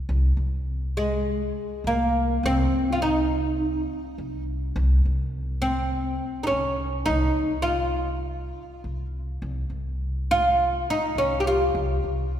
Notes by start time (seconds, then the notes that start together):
0.09 C2
0.37 C2
0.97 G#3
1.84 C2 A#3
2.43 C2 C4
2.72 C2
2.92 F4
3.02 D#4
4.18 C2
4.76 C2
5.05 C2
5.62 C4
6.43 C#4 D#4
6.51 C2
7.06 C2 D#4
7.37 C2
7.62 F4
8.84 C2
9.42 C2
9.70 C2
10.31 F4
10.90 D#4
11.15 C2 C#4
11.40 G4
11.47 F4
11.75 C2
12.04 C2